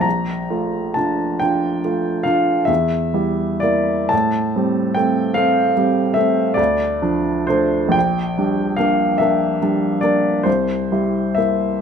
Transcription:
<<
  \new Staff \with { instrumentName = "Upright piano" } { \time 9/8 \key bes \lydian \tempo 4. = 46 bes''4 a''8 g''4 f''8 e''4 d''8 | a''4 g''8 f''4 e''8 d''4 c''8 | g''4 f''8 e''4 d''8 c''4 e''8 | }
  \new Staff \with { instrumentName = "Upright piano" } { \time 9/8 \key bes \lydian bes,,8 <a f'>8 <d' f'>8 <d' f'>8 <a f'>8 <d' f'>8 e,8 <g e'>8 <bes e'>8 | a,8 <g c'>8 <a c'>8 <a c'>8 <g c'>8 <a c'>8 d,8 <f d'>8 <a d'>8 | bes,,8 <g d'>8 <bes d'>8 <bes d'>8 <g d'>8 <bes d'>8 c,8 <g e'>8 <bes e'>8 | }
>>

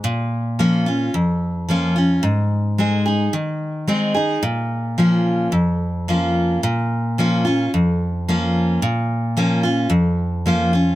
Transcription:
\new Staff \with { instrumentName = "Steel-string acoustic guitar" } { \time 4/4 \key bes \minor \tempo 4 = 110 << { r4 <f bes des' f'>8 <des' f'>8 r4 <f bes des' f'>8 <des' f'>8 | r4 <aes c' ees' aes'>8 <ees' aes'>8 r4 <aes c' ees' aes'>8 <ees' aes'>8 | r4 <f bes des' f'>4 r4 <f bes des' f'>4 | r4 <f bes des' f'>8 <des' f'>8 r4 <f bes des' f'>4 |
r4 <f bes des' f'>8 <des' f'>8 r4 <f bes des' f'>8 <des' f'>8 | } \\ { bes,2 f,2 | aes,2 ees2 | bes,2 f,2 | bes,2 f,2 |
bes,2 f,2 | } >> }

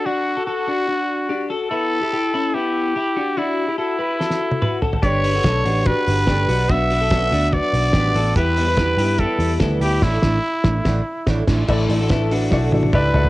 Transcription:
<<
  \new Staff \with { instrumentName = "Trumpet" } { \time 4/4 \key d \major \tempo 4 = 144 fis'4 fis'2~ fis'8 r8 | a'2 g'2 | e'4 e'2~ e'8 r8 | cis''2 b'2 |
e''2 d''2 | b'2 a'4 r8 g'8 | e'2. r4 | r2. b'4 | }
  \new Staff \with { instrumentName = "Upright piano" } { \time 4/4 \key d \major r1 | r1 | r1 | r1 |
r1 | r1 | r1 | <e' a' d''>8 <e' a' d''>8 <e' a' b'>8 <e' a' b'>8 <e' a' d''>8 <e' a' d''>8 <e' a' d''>8 <e' a' d''>8 | }
  \new Staff \with { instrumentName = "Clean electric guitar" } { \time 4/4 \key d \major <d' fis'>8. <fis' a'>16 <fis' a'>8 <d' fis'>8 <d' fis'>4 <d' g'>8 <fis' a'>8 | <b e'>8. <e' g'>16 <e' g'>8 <cis' e'>8 <b e'>4 <e' g'>8 <d' fis'>8 | <d' fis'>8. <e' g'>16 <fis' a'>8 <g' b'>8 <fis' a'>4 <fis' b'>8 <fis' a'>8 | <d' g'>8. <fis' a'>16 <d' a'>8 <d' fis'>8 <d' fis'>4 <d' g'>8 <d' fis'>8 |
<d' fis'>8. <fis' a'>16 <fis' a'>8 <d' fis'>8 <d' fis'>4 <d' g'>8 <fis' a'>8 | <e' g'>8. <g' b'>16 <g' b'>8 <e' g'>8 <e' g'>4 <e' a'>8 <e' g'>8 | r1 | <a e'>8. <fis' a'>16 <e' a'>8 <d' fis'>8 <d' fis'>4 <e' g'>8 <d' fis'>8 | }
  \new Staff \with { instrumentName = "Steel-string acoustic guitar" } { \time 4/4 \key d \major r1 | r1 | r1 | <g a d' g' b'>8 <d' g' b'>8 <g a d' g' b'>8 <d' g' b'>8 <a d' g' b'>8 <d' g' b'>8 <g a d' g' b'>8 <d' g' b'>8 |
<b, fis b d' fis'>8 <b d' fis'>8 <b, fis b d' fis'>8 <b d' fis'>8 <fis b d' fis'>8 <b d' fis'>8 <b, fis b d' fis'>8 <b d' fis'>8 | <e g b e'>8 <g b e'>8 <e g b e'>8 <g b e'>8 <e g b e'>8 <g b e'>8 <e g b e'>8 <g b e'>8 | <a, d a d' e'>8 <a d' e'>8 r8 <a d' e'>8 <d a d' e'>8 r8 <a, d a d' e'>8 <a d' e'>8 | <a, d a d' e'>8 <a d' e'>8 <d a d' e'>8 <a d' e'>8 <a, d a d' e'>8 <a d' e'>8 <d a d' e'>8 <a d' e'>8 | }
  \new Staff \with { instrumentName = "Picked electric bass" } { \clef bass \time 4/4 \key d \major r1 | r1 | r1 | g,,4 b,,8 a,,8. r16 g,,8 g,,8 b,,8 |
b,,4. d,8. r16 b,,8 a,,8 a,,8 | e,4. g,8. r16 e,8 d,8 d,8 | a,,8 a,,8 r8 a,,8 a,,8 r8 a,,8 a,,8 | a,,8 a,,4. b,,8 a,,8 cis,8 cis,8 | }
  \new DrumStaff \with { instrumentName = "Drums" } \drummode { \time 4/4 r4 r4 r4 r4 | r4 r4 r4 r4 | r4 r4 sn16 sn8 tommh16 toml8 tomfh16 tomfh16 | <hh bd>8 hho8 <hh bd sn>8 hho8 <hh bd>8 hho8 <bd sn>8 hho8 |
<hh bd>8 hho8 <hh bd sn>8 hho8 <hh bd>8 hho8 <hh bd sn>8 hho8 | <hh bd>8 hho8 <hh bd sn>8 hho8 <hh bd>8 hho8 <hh bd sn>8 hho8 | <cymc bd sn>8 <bd sn>8 r8 <bd sn>8 <bd sn>4 <bd sn>8 <cymc bd sn>8 | <cymc bd>8 hho8 <hh bd sn>8 hho8 <bd sn>8 tommh16 tommh16 <bd toml>8 tomfh16 tomfh16 | }
>>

